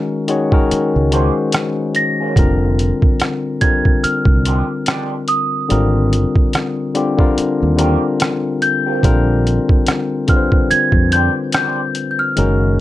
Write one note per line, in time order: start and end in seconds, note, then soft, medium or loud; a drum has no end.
0.00 0.21 D#3 loud
0.00 0.22 G#3 medium
0.00 0.22 C#4 medium
0.00 0.23 F#4 medium
0.00 0.23 A#4 loud
0.28 0.50 D#3 medium
0.28 0.51 G#3 medium
0.28 0.51 C#4 medium
0.28 0.51 F#4 medium
0.28 0.52 C#5 medium
0.28 closed hi-hat medium
0.51 1.08 D#3 medium
0.51 1.08 G#3 medium
0.51 1.08 C#4 medium
0.51 1.09 F#4 medium
0.51 1.09 A#4 medium
0.51 kick medium
0.71 muted fretless electric bass stroke soft
0.71 closed hi-hat medium
0.96 1.29 C#2 medium
1.11 2.30 D#3 medium
1.11 1.30 F3 medium
1.11 2.30 G#3 medium
1.11 1.31 A#3 medium
1.11 2.30 C#4 medium
1.11 1.31 C#4 medium
1.11 2.31 F#4 medium
1.11 1.31 G#4 medium
1.11 2.31 C5 medium
1.11 closed hi-hat medium
1.52 cross-stick loud
1.52 closed hi-hat medium
1.95 3.67 A#6 medium
1.95 closed hi-hat medium
2.20 2.34 F3 soft
2.20 2.34 A#3 soft
2.20 2.33 C#4 soft
2.20 2.33 G#4 medium
2.36 2.91 F1 medium
2.36 3.55 D3 medium
2.36 3.55 G3 medium
2.36 3.56 C4 medium
2.36 3.56 F4 medium
2.36 3.56 A#4 medium
2.36 kick medium
2.36 closed hi-hat medium
2.79 closed hi-hat soft
3.02 kick medium
3.20 cross-stick medium
3.20 closed hi-hat medium
3.61 5.19 D3 medium
3.61 5.19 G3 medium
3.61 5.20 C4 medium
3.61 5.20 F4 medium
3.61 5.20 A#4 medium
3.61 4.04 G#6 medium
3.61 kick medium
3.61 closed hi-hat medium
3.85 kick medium
4.04 5.24 F6 medium
4.04 muted fretless electric bass stroke soft
4.04 closed hi-hat medium
4.25 4.61 C2 medium
4.25 kick medium
4.45 4.64 F3 medium
4.45 4.64 G#3 medium
4.45 4.64 D4 medium
4.45 4.65 G4 medium
4.45 closed hi-hat medium
4.86 5.11 F3 medium
4.86 5.11 G#3 medium
4.86 5.11 D4 medium
4.86 5.11 G4 medium
4.86 cross-stick loud
4.86 closed hi-hat medium
5.28 6.91 D#6 medium
5.28 closed hi-hat medium
5.69 6.25 G#1 medium
5.69 6.87 D3 medium
5.69 6.88 G3 medium
5.69 6.88 C4 medium
5.69 6.89 F4 medium
5.69 6.89 A#4 medium
5.69 closed hi-hat medium
6.13 closed hi-hat medium
6.36 kick medium
6.53 cross-stick medium
6.53 closed hi-hat medium
6.94 7.16 D3 medium
6.94 7.17 G3 medium
6.94 7.17 C4 medium
6.94 7.18 F4 medium
6.94 7.18 G4 medium
6.94 closed hi-hat medium
7.18 7.74 D3 medium
7.18 7.74 G3 medium
7.18 7.75 C4 medium
7.18 7.75 F4 medium
7.18 7.75 A#4 medium
7.18 kick medium
7.38 muted fretless electric bass stroke soft
7.38 closed hi-hat medium
7.62 7.96 D#2 medium
7.76 8.95 D3 medium
7.76 7.97 D#3 medium
7.76 8.96 G3 medium
7.76 7.97 A#3 medium
7.76 8.96 C4 medium
7.76 8.97 F4 medium
7.76 8.97 A#4 medium
7.76 closed hi-hat medium
7.81 7.98 C4 medium
7.81 7.98 G4 medium
8.20 cross-stick loud
8.20 closed hi-hat medium
8.62 10.33 G6 medium
8.62 closed hi-hat medium
8.86 9.00 D#3 soft
8.86 9.00 A#3 soft
8.86 9.00 C4 medium
8.86 8.99 G4 medium
9.02 9.58 A#1 medium
9.02 10.21 D3 medium
9.02 10.21 G3 medium
9.02 10.22 C4 medium
9.02 10.22 F4 medium
9.02 10.23 A#4 loud
9.02 kick medium
9.02 closed hi-hat medium
9.47 closed hi-hat medium
9.69 kick medium
9.87 cross-stick loud
9.87 closed hi-hat medium
10.27 11.85 D3 medium
10.27 11.86 G3 medium
10.27 11.86 C4 medium
10.27 11.87 F4 medium
10.27 10.37 B4 medium
10.27 10.67 F6 medium
10.27 kick medium
10.27 closed hi-hat medium
10.37 11.90 C5 medium
10.52 kick medium
10.71 11.13 G#6 medium
10.71 muted fretless electric bass stroke soft
10.71 closed hi-hat medium
10.92 11.28 F2 medium
10.92 kick medium
11.12 11.30 G#3 medium
11.12 11.31 C4 medium
11.12 11.31 D4 medium
11.12 11.31 G4 medium
11.12 11.31 G6 medium
11.12 closed hi-hat medium
11.52 11.77 G#3 medium
11.52 11.78 C4 medium
11.52 11.78 D4 medium
11.52 11.78 G4 medium
11.52 12.10 G6 medium
11.52 cross-stick loud
11.52 closed hi-hat medium
11.95 closed hi-hat medium
12.11 12.19 G6 soft
12.19 12.80 F6 medium
12.36 12.80 F#1 medium
12.36 12.80 D#3 medium
12.36 12.80 G#3 medium
12.36 12.80 C#4 medium
12.36 12.80 F#4 medium
12.36 12.80 A#4 medium
12.36 closed hi-hat medium